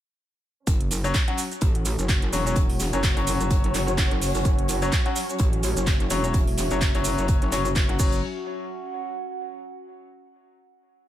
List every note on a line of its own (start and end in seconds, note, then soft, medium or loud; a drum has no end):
0.67 1.13 F#1 medium
0.67 7.96 F#3 medium
0.67 7.96 C#4 medium
0.67 7.98 C#4 medium
0.67 7.96 C#5 medium
0.67 kick loud
0.67 closed hi-hat loud
0.67 closed hi-hat medium
0.67 cabasa soft
0.81 closed hi-hat medium
0.88 8.00 F#4 medium
0.88 closed hi-hat medium
0.88 open hi-hat loud
0.88 cabasa medium
1.04 1.15 F#3 loud
1.04 1.15 C#4 medium
1.04 1.15 C#5 loud
1.04 cabasa medium
1.14 kick loud
1.14 snare loud
1.14 clap loud
1.14 closed hi-hat loud
1.14 closed hi-hat medium
1.14 cabasa soft
1.28 1.39 F#3 medium
1.28 1.39 C#4 medium
1.28 1.39 F#5 loud
1.28 closed hi-hat medium
1.37 snare soft
1.37 closed hi-hat medium
1.37 open hi-hat loud
1.37 cabasa medium
1.51 closed hi-hat soft
1.51 cabasa medium
1.61 1.97 A1 medium
1.61 kick loud
1.61 closed hi-hat medium
1.61 cabasa soft
1.71 5.75 F#5 medium
1.75 closed hi-hat medium
1.85 closed hi-hat medium
1.85 open hi-hat loud
1.85 cabasa loud
1.99 2.31 F#1 loud
1.99 closed hi-hat soft
1.99 cabasa soft
2.08 kick loud
2.08 snare loud
2.08 clap loud
2.08 closed hi-hat medium
2.08 cabasa soft
2.22 closed hi-hat medium
2.33 2.55 E1 loud
2.33 2.44 F#3 medium
2.33 2.44 C#4 medium
2.33 2.44 C#5 loud
2.33 snare medium
2.33 closed hi-hat medium
2.33 open hi-hat loud
2.33 cabasa loud
2.46 2.57 F#3 medium
2.46 2.57 C#4 medium
2.46 2.57 C#5 medium
2.46 cabasa medium
2.56 2.91 E1 loud
2.56 kick loud
2.56 closed hi-hat medium
2.56 cabasa soft
2.70 open hi-hat medium
2.80 snare medium
2.80 closed hi-hat medium
2.80 open hi-hat loud
2.80 cabasa medium
2.93 3.15 F#1 loud
2.93 3.04 F#3 medium
2.93 3.04 C#4 medium
2.93 3.04 C#5 medium
2.93 closed hi-hat soft
2.93 cabasa medium
3.03 kick loud
3.03 snare loud
3.03 clap loud
3.03 closed hi-hat medium
3.03 cabasa soft
3.17 3.38 F#1 loud
3.17 4.79 F#3 medium
3.17 4.79 C#4 medium
3.17 4.79 C#5 loud
3.17 closed hi-hat medium
3.17 closed hi-hat soft
3.27 closed hi-hat medium
3.27 open hi-hat loud
3.27 cabasa loud
3.40 3.73 F#1 loud
3.40 closed hi-hat soft
3.40 cabasa medium
3.51 kick loud
3.51 closed hi-hat loud
3.51 closed hi-hat medium
3.51 cabasa soft
3.64 closed hi-hat medium
3.74 4.09 F#1 loud
3.74 snare medium
3.74 clap soft
3.74 closed hi-hat medium
3.74 open hi-hat loud
3.74 cabasa medium
3.88 closed hi-hat soft
3.88 cabasa medium
3.98 kick loud
3.98 snare loud
3.98 clap loud
3.98 closed hi-hat medium
3.98 cabasa soft
4.11 4.33 F#1 loud
4.11 closed hi-hat medium
4.21 snare soft
4.21 open hi-hat loud
4.21 open hi-hat medium
4.21 cabasa loud
4.35 4.44 F#1 loud
4.35 snare soft
4.35 closed hi-hat soft
4.35 cabasa medium
4.45 4.91 F#1 loud
4.45 kick loud
4.45 closed hi-hat medium
4.45 cabasa soft
4.59 closed hi-hat medium
4.68 closed hi-hat medium
4.68 open hi-hat loud
4.68 cabasa medium
4.82 4.93 F#3 loud
4.82 4.93 C#4 medium
4.82 4.93 C#5 loud
4.82 cabasa medium
4.92 kick loud
4.92 snare loud
4.92 clap loud
4.92 closed hi-hat medium
4.92 cabasa soft
5.06 5.17 F#3 medium
5.06 5.17 C#4 medium
5.06 5.17 F#5 loud
5.06 closed hi-hat medium
5.16 snare soft
5.16 closed hi-hat medium
5.16 open hi-hat loud
5.16 cabasa loud
5.29 closed hi-hat soft
5.29 cabasa medium
5.39 5.74 A1 loud
5.39 kick loud
5.39 closed hi-hat loud
5.39 closed hi-hat medium
5.39 cabasa soft
5.53 closed hi-hat medium
5.60 7.99 E5 medium
5.60 closed hi-hat medium
5.60 open hi-hat loud
5.60 cabasa medium
5.77 6.09 F#1 medium
5.77 closed hi-hat soft
5.77 cabasa medium
5.87 kick loud
5.87 snare loud
5.87 clap loud
5.87 closed hi-hat medium
5.87 cabasa soft
6.00 closed hi-hat medium
6.10 6.33 E1 loud
6.10 6.22 F#3 medium
6.10 6.22 C#4 medium
6.10 6.22 C#5 loud
6.10 snare soft
6.10 closed hi-hat medium
6.10 open hi-hat loud
6.10 cabasa loud
6.24 6.35 F#3 medium
6.24 6.35 C#4 medium
6.24 6.35 C#5 medium
6.24 cabasa medium
6.34 6.69 E1 loud
6.34 kick loud
6.34 closed hi-hat medium
6.34 cabasa soft
6.47 open hi-hat medium
6.57 snare medium
6.57 closed hi-hat medium
6.57 open hi-hat loud
6.57 cabasa loud
6.71 6.93 F#1 loud
6.71 6.82 F#3 medium
6.71 6.82 C#4 medium
6.71 6.82 C#5 medium
6.71 closed hi-hat soft
6.71 cabasa medium
6.81 kick loud
6.81 snare loud
6.81 clap loud
6.81 closed hi-hat medium
6.81 cabasa soft
6.95 7.16 F#1 loud
6.95 7.50 F#3 medium
6.95 7.50 C#4 medium
6.95 7.50 C#5 loud
6.95 closed hi-hat soft
7.04 closed hi-hat medium
7.04 open hi-hat loud
7.04 cabasa loud
7.18 7.51 F#1 loud
7.18 closed hi-hat soft
7.18 cabasa medium
7.28 kick loud
7.28 closed hi-hat medium
7.28 cabasa soft
7.42 closed hi-hat medium
7.52 7.98 F#1 loud
7.52 7.66 F#3 loud
7.52 7.66 C#4 medium
7.52 7.66 C#5 loud
7.52 snare medium
7.52 clap soft
7.52 closed hi-hat medium
7.52 open hi-hat loud
7.52 cabasa medium
7.65 closed hi-hat soft
7.65 cabasa medium
7.75 kick loud
7.75 snare loud
7.75 clap loud
7.75 closed hi-hat medium
7.75 cabasa soft
7.89 7.98 F#3 medium
7.89 7.98 C#4 medium
7.89 7.98 F#5 medium
7.89 closed hi-hat medium
7.99 8.21 F#1 loud
7.99 8.18 F#3 medium
7.99 8.21 F#3 medium
7.99 9.84 C#4 medium
7.99 8.18 C#4 medium
7.99 8.22 C#4 medium
7.99 8.18 C#5 loud
7.99 8.22 C#5 medium
7.99 kick loud
7.99 crash medium
7.99 cabasa loud
8.08 9.85 F#4 medium
8.12 cabasa medium
8.39 10.08 F#5 medium